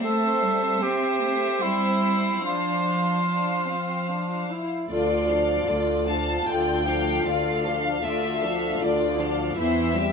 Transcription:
0.04 cello section A3, viola section C4, cor anglais A4, violin section C5 E5
0.44 cello section G3
0.82 cello section C4, cor anglais G4
1.23 cello section A3
1.62 cello section G3, cor anglais E4
2.44 cello section F3, viola section D4, cor anglais F4, violin section F5
3.28 viola section D4
3.68 viola section C4
4.10 viola section D4
4.50 viola section E4
4.90 cello section D2, viola section D3 F4, violin section F4 D5
5.29 viola section F3 D4, violin section A4 F5
5.68 cello section D2, viola section D3 F4, violin section F4 D5
6.07 viola section F3 D4, violin section A4 F5 A5
6.47 cello section D2, viola section D3 F4, violin section F4 D5 G5
6.86 viola section F3 D4, violin section A4 F5
7.25 cello section D2, viola section D3 F4, violin section F4 D5 F5
7.64 viola section F3 D4, violin section A4 F5
8.03 cello section D2, viola section D3 F4, violin section F4 D5 E5
8.42 viola section F3 D4, violin section A4 F5
8.81 cello section D2, viola section D3 F4, violin section F4 D5
9.19 viola section F3 D4, violin section A4 F5
9.57 cello section E2, viola section E3 E4, violin section E4 C5 E5
9.96 viola section G3 C4, violin section G4 E5

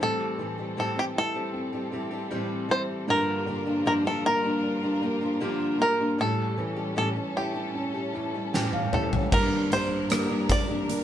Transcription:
Already playing: string section A4
0.00 steel-string acoustic guitar A2 E3 G3 C4 G4, felt piano A2, string section G3 C4, five-string banjo A4
0.38 felt piano E3, steel-string acoustic guitar E3 G3 C4 G4
0.58 steel-string acoustic guitar G3 C4 G4
0.77 steel-string acoustic guitar A2 E3 G3 C4 G4, felt piano C4, five-string banjo A4
0.96 steel-string acoustic guitar G3 C4 G4, five-string banjo G4
1.16 felt piano E4, five-string banjo A4
1.34 steel-string acoustic guitar G3 C4 G4
1.54 felt piano C4
1.73 steel-string acoustic guitar G3 C4 G4
1.92 steel-string acoustic guitar E3 G3 C4 G4, felt piano E4
2.11 steel-string acoustic guitar G3 C4 G4
2.30 steel-string acoustic guitar A2 E3 G3 C4 G4, felt piano C4
2.69 steel-string acoustic guitar E3 G3 C4 G4, felt piano E4, five-string banjo C5
3.07 felt piano G2, steel-string acoustic guitar G2 D3 F3 A#3 D4 G4, string section F4 A#4, five-string banjo A#4
3.46 felt piano D3, steel-string acoustic guitar F3 A#3 D4 G4
3.65 steel-string acoustic guitar F3 A#3 D4 G4
3.85 steel-string acoustic guitar G2 D3 F3 A#3 D4 G4, felt piano F3, five-string banjo A#4
4.04 steel-string acoustic guitar F3 A#3 D4 G4, five-string banjo A4
4.25 felt piano A#3, five-string banjo A#4
4.43 steel-string acoustic guitar F3 A#3 D4 G4
4.64 felt piano D4
4.83 steel-string acoustic guitar F3 A#3 D4 G4
5.02 steel-string acoustic guitar F3 A#3 D4 G4, felt piano A#3
5.21 steel-string acoustic guitar F3 A#3 D4 G4
5.40 steel-string acoustic guitar G2 D3 F3 A#3 D4 G4, felt piano F3
5.79 steel-string acoustic guitar F3 A#3 D4 G4, felt piano A#3, five-string banjo A#4
5.99 steel-string acoustic guitar F3 A#3 D4 G4
6.18 steel-string acoustic guitar A2 E3 G3 C#4 G4, felt piano A2, string section C#4 A4, five-string banjo A4
6.57 steel-string acoustic guitar E3 G3 C#4 G4, felt piano E3
6.76 steel-string acoustic guitar G3 C#4 G4
6.96 steel-string acoustic guitar A2 E3 G3 C#4 G4, felt piano C#4, five-string banjo A4
7.15 steel-string acoustic guitar G3 C#4 G4
7.36 felt piano E4, five-string banjo G4
7.54 steel-string acoustic guitar G3 C#4 G4
7.75 felt piano C#4
7.94 steel-string acoustic guitar G3 C#4 G4
8.14 steel-string acoustic guitar E3 G3 C#4 G4, felt piano E4
8.34 steel-string acoustic guitar G3 C#4 G4
8.54 steel-string acoustic guitar A2 E3 G3 C#4 G4, felt piano C#4 G5, snare
8.73 felt piano F5, high tom
8.92 steel-string acoustic guitar E3 G3 C#4 G4, felt piano E4 C#5, five-string banjo A4, mid tom
9.12 steel-string acoustic guitar G3 C#4 G4, floor tom
9.31 steel-string acoustic guitar G2 D3 G3 A#3 D4 G4, felt piano G2, string section G3 D4 A#4, five-string banjo A#4, kick, crash
9.70 steel-string acoustic guitar G3 A#3 D4 G4, felt piano G3, five-string banjo C5, closed hi-hat
10.10 steel-string acoustic guitar G2 D3 G3 A#3 D4 G4, felt piano A#3, cross-stick, closed hi-hat
10.29 steel-string acoustic guitar G3 A#3 D4 G4
10.48 steel-string acoustic guitar G3 A#3 D4 G4, felt piano G3, five-string banjo D5, kick, closed hi-hat
10.68 steel-string acoustic guitar G3 A#3 D4 G4
10.88 felt piano A#3, closed hi-hat

